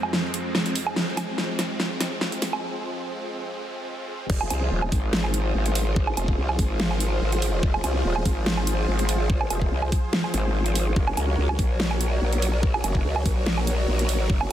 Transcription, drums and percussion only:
0.03 low woodblock medium
0.13 snare medium
0.34 closed hi-hat medium
0.55 snare medium
0.66 closed hi-hat soft
0.76 open hi-hat medium
0.87 low woodblock medium
0.96 snare medium
1.17 snare medium
1.17 closed hi-hat medium
1.17 low woodblock medium
1.38 snare medium
1.59 snare medium
1.59 closed hi-hat medium
1.80 snare medium
2.01 snare medium
2.01 closed hi-hat medium
2.21 snare medium
2.32 closed hi-hat soft
2.42 snare medium
2.42 open hi-hat medium
2.53 low woodblock medium
4.30 kick loud
4.30 crash loud
4.41 low woodblock medium
4.50 closed hi-hat medium
4.50 low woodblock medium
4.82 low woodblock medium
4.92 kick loud
4.92 open hi-hat medium
5.13 snare loud
5.24 low woodblock medium
5.34 closed hi-hat medium
5.66 closed hi-hat soft
5.75 open hi-hat loud
5.96 kick loud
6.07 low woodblock medium
6.17 closed hi-hat medium
6.17 low woodblock medium
6.28 kick medium
6.49 low woodblock medium
6.59 kick loud
6.59 open hi-hat medium
6.80 snare loud
6.91 low woodblock soft
7.00 closed hi-hat medium
7.32 closed hi-hat soft
7.42 open hi-hat medium
7.63 kick loud
7.74 low woodblock medium
7.84 closed hi-hat medium
7.84 low woodblock medium
8.16 low woodblock medium
8.26 kick loud
8.26 open hi-hat medium
8.46 snare loud
8.57 low woodblock soft
8.67 closed hi-hat medium
8.99 closed hi-hat soft
9.09 open hi-hat medium
9.30 kick loud
9.41 low woodblock medium
9.50 closed hi-hat medium
9.50 low woodblock medium
9.62 kick medium
9.82 low woodblock medium
9.92 kick loud
9.92 open hi-hat medium
10.13 snare loud
10.24 low woodblock soft
10.34 closed hi-hat medium
10.66 closed hi-hat soft
10.75 open hi-hat medium
10.96 kick loud
11.07 low woodblock medium
11.17 closed hi-hat medium
11.17 low woodblock medium
11.49 low woodblock medium
11.59 kick loud
11.59 open hi-hat medium
11.80 snare loud
11.91 low woodblock medium
12.01 closed hi-hat medium
12.33 closed hi-hat soft
12.42 open hi-hat medium
12.63 kick loud
12.74 low woodblock medium
12.84 closed hi-hat medium
12.84 low woodblock medium
12.95 kick medium
13.16 low woodblock medium
13.26 kick loud
13.26 open hi-hat medium
13.46 snare loud
13.58 low woodblock medium
13.67 closed hi-hat medium
13.99 closed hi-hat soft
14.09 open hi-hat medium
14.30 kick loud
14.41 low woodblock medium

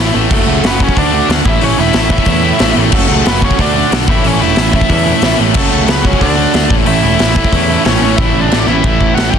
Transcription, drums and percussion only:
0.31 kick loud
0.31 crash loud
0.64 snare loud
0.64 open hi-hat medium
0.80 kick loud
0.89 kick medium
0.97 kick loud
0.97 open hi-hat medium
1.30 snare loud
1.30 open hi-hat medium
1.45 kick loud
1.61 open hi-hat medium
1.93 snare loud
1.93 open hi-hat medium
2.10 kick loud
2.18 kick medium
2.25 kick loud
2.25 open hi-hat medium
2.59 snare loud
2.59 open hi-hat medium
2.92 kick loud
2.92 crash loud
3.26 snare loud
3.26 open hi-hat medium
3.42 kick loud
3.51 kick loud
3.59 kick loud
3.59 open hi-hat medium
3.92 snare loud
3.92 open hi-hat medium
4.08 kick loud
4.24 open hi-hat medium
4.56 snare loud
4.56 open hi-hat medium
4.73 kick loud
4.81 kick loud
4.90 kick loud
4.90 open hi-hat medium
5.22 snare loud
5.22 open hi-hat medium
5.54 kick loud
5.54 crash loud
5.88 snare loud
5.88 open hi-hat medium
6.05 kick medium
6.13 kick loud
6.21 kick loud
6.21 open hi-hat medium
6.54 snare loud
6.54 open hi-hat medium
6.70 kick loud
6.86 open hi-hat medium
7.19 snare loud
7.19 open hi-hat medium
7.36 kick loud
7.44 kick loud
7.52 kick loud
7.52 open hi-hat medium
7.85 snare loud
7.85 open hi-hat medium
8.18 kick loud
8.18 crash medium
8.52 snare loud
8.52 crash medium
8.84 kick loud
8.84 crash medium
9.01 kick medium
9.17 snare loud
9.17 crash medium
9.34 kick medium

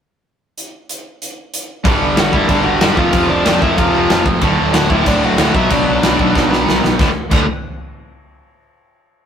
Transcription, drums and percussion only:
0.58 closed hi-hat medium
0.89 closed hi-hat medium
1.22 closed hi-hat medium
1.54 closed hi-hat medium
1.85 kick loud
1.85 crash medium
2.17 snare loud
2.17 crash medium
2.33 kick medium
2.49 kick medium
2.49 crash medium
2.81 snare loud
2.81 crash medium
2.97 kick medium
3.13 kick medium
3.13 crash medium
3.45 snare loud
3.45 crash medium
3.62 kick medium
3.78 kick loud
3.78 crash medium
4.10 snare loud
4.10 crash medium
4.26 kick loud
4.41 kick medium
4.41 crash medium
4.74 snare loud
4.74 crash medium
4.90 kick medium
5.06 kick loud
5.06 crash medium
5.38 snare loud
5.38 crash medium
5.55 kick loud
5.70 kick medium
5.70 crash medium
6.03 snare loud
6.03 crash medium
6.19 kick medium
6.36 kick loud
6.36 snare medium
6.53 snare medium
6.69 snare loud
6.84 snare medium
6.99 kick loud
6.99 snare medium
7.31 kick loud
7.31 crash medium

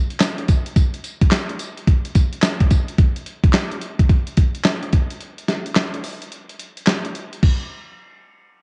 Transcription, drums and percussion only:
0.10 closed hi-hat medium
0.20 snare loud
0.20 clap medium
0.20 closed hi-hat medium
0.20 tambourine loud
0.38 closed hi-hat medium
0.48 kick loud
0.48 closed hi-hat medium
0.48 tambourine medium
0.66 closed hi-hat medium
0.76 kick loud
0.76 closed hi-hat medium
0.76 tambourine medium
0.94 closed hi-hat medium
1.04 closed hi-hat medium
1.04 tambourine medium
1.21 kick medium
1.21 closed hi-hat medium
1.31 snare loud
1.31 clap loud
1.31 closed hi-hat medium
1.31 tambourine medium
1.49 closed hi-hat soft
1.59 closed hi-hat medium
1.59 tambourine medium
1.77 closed hi-hat medium
1.87 kick loud
1.87 closed hi-hat medium
2.05 closed hi-hat medium
2.15 kick loud
2.15 closed hi-hat medium
2.15 tambourine medium
2.33 closed hi-hat medium
2.42 snare loud
2.42 clap loud
2.42 closed hi-hat medium
2.42 tambourine loud
2.60 kick medium
2.60 closed hi-hat medium
2.71 kick medium
2.71 closed hi-hat medium
2.71 tambourine medium
2.88 closed hi-hat medium
2.98 kick loud
2.98 closed hi-hat medium
3.16 closed hi-hat medium
3.26 closed hi-hat medium
3.44 kick loud
3.44 closed hi-hat soft
3.53 snare loud
3.53 clap medium
3.53 closed hi-hat medium
3.72 closed hi-hat soft
3.82 closed hi-hat medium
3.99 kick medium
3.99 closed hi-hat medium
4.10 kick loud
4.10 closed hi-hat medium
4.27 closed hi-hat medium
4.37 kick loud
4.37 closed hi-hat medium
4.55 closed hi-hat medium
4.64 snare loud
4.64 clap medium
4.64 closed hi-hat medium
4.83 closed hi-hat medium
4.93 kick medium
4.93 closed hi-hat medium
5.11 closed hi-hat medium
5.21 closed hi-hat medium
5.38 closed hi-hat medium
5.48 snare medium
5.48 closed hi-hat medium
5.66 closed hi-hat medium
5.75 snare loud
5.75 clap medium
5.75 closed hi-hat medium
5.94 closed hi-hat soft
6.04 open hi-hat medium
6.22 closed hi-hat medium
6.32 closed hi-hat medium
6.49 closed hi-hat medium
6.59 closed hi-hat medium
6.77 closed hi-hat medium
6.87 snare loud
6.87 clap medium
6.87 closed hi-hat medium
7.05 closed hi-hat medium
7.15 closed hi-hat medium
7.33 closed hi-hat medium
7.43 kick loud
7.43 crash medium

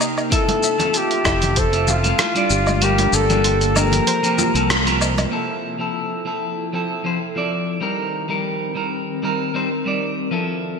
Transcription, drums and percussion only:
0.01 low woodblock medium
0.01 shaker medium
0.18 low woodblock medium
0.18 shaker soft
0.32 kick loud
0.32 closed hi-hat medium
0.32 shaker soft
0.49 closed hi-hat soft
0.49 high conga medium
0.63 shaker medium
0.79 closed hi-hat soft
0.79 low conga medium
0.79 shaker soft
0.94 closed hi-hat medium
0.94 shaker soft
1.11 closed hi-hat soft
1.25 kick loud
1.25 cross-stick medium
1.25 low woodblock medium
1.25 shaker medium
1.42 closed hi-hat soft
1.42 low conga medium
1.42 shaker soft
1.56 kick loud
1.56 closed hi-hat medium
1.56 shaker soft
1.73 closed hi-hat soft
1.73 shaker soft
1.88 low conga medium
1.88 shaker medium
2.04 closed hi-hat soft
2.04 high conga medium
2.04 shaker soft
2.19 cross-stick medium
2.19 closed hi-hat medium
2.19 shaker soft
2.36 closed hi-hat soft
2.36 shaker soft
2.50 shaker medium
2.67 high conga medium
2.67 low woodblock medium
2.67 shaker soft
2.82 closed hi-hat medium
2.82 shaker soft
2.98 closed hi-hat soft
2.98 high conga medium
2.98 shaker soft
3.13 shaker medium
3.30 closed hi-hat soft
3.30 low conga loud
3.30 shaker soft
3.44 closed hi-hat medium
3.44 shaker soft
3.61 closed hi-hat soft
3.61 shaker soft
3.76 high conga medium
3.76 low woodblock medium
3.76 shaker medium
3.92 closed hi-hat medium
3.92 low conga medium
3.92 shaker soft
4.07 closed hi-hat medium
4.07 shaker soft
4.24 closed hi-hat soft
4.24 shaker soft
4.38 high conga medium
4.38 low conga loud
4.38 shaker medium
4.55 closed hi-hat soft
4.55 shaker soft
4.70 cross-stick medium
4.70 closed hi-hat medium
4.70 shaker soft
4.87 closed hi-hat soft
4.87 shaker soft
5.01 low woodblock medium
5.01 shaker medium
5.18 closed hi-hat soft
5.18 high conga medium
5.18 low woodblock medium
5.18 shaker soft

